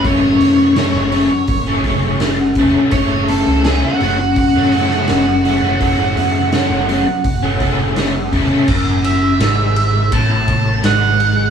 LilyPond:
<<
  \new Staff \with { instrumentName = "Lead electric guitar" } { \time 4/4 \key fis \minor \tempo 4 = 83 cis''2. r4 | cis''8 a'8 gis'16 fis'8. fis'2~ | fis'2. r4 | r8 e''4. a''16 a''8. fis''4 | }
  \new Staff \with { instrumentName = "Overdriven electric guitar" } { \clef bass \time 4/4 \key fis \minor <fis, cis fis a cis'>4 <fis, cis fis a cis'>8 <cis fis a cis'>8. <fis a cis'>16 <cis fis a cis'>8 <fis, cis fis a cis'>8 <cis fis a cis'>16 <fis a cis'>16 | <fis, cis fis a cis'>4 <fis, cis fis a cis'>8 <cis fis a cis'>8. <fis a cis'>16 <cis fis a cis'>8 <fis, cis fis a cis'>8 <cis fis a cis'>16 <fis a cis'>16 | <fis, cis fis a cis'>4 <fis, cis fis a cis'>8 <cis fis a cis'>8. <fis a cis'>16 <cis fis a cis'>8 <fis, cis fis a cis'>8 <cis fis a cis'>16 <fis a cis'>16 | fis,4 gis,4 a,4 gis,4 | }
  \new Staff \with { instrumentName = "Picked electric bass" } { \clef bass \time 4/4 \key fis \minor fis,,8 fis,8. fis,,8 r16 fis,,8. fis,,8. e,,16 r16 | fis,,8. cis,8 r16 fis,,8 r16 fis,8. fis,,8. fis,,16~ | fis,,8 fis,8. fis,,8 r16 fis,,8. fis,,8. e,,16 r16 | fis,,4 gis,,4 a,,4 gis,,4 | }
  \new DrumStaff \with { instrumentName = "Drums" } \drummode { \time 4/4 <hho bd>8 hho8 <hho sn>8 hho8 <hho bd>8 <hho bd>8 <hho sn>8 <hho bd>8 | <hho bd>8 hho8 <hho sn>8 hho8 <hho bd>8 hho16 sn16 <hho sn>8 hho8 | <hho bd>8 hho8 <hho sn>8 hho8 <hho bd>8 <hho bd>8 <hho sn>8 <hho bd>8 | <cymc bd>8 cymr8 <cymr sn>8 cymr8 <bd cymr>8 <bd cymr>8 <cymr sn>8 cymr8 | }
>>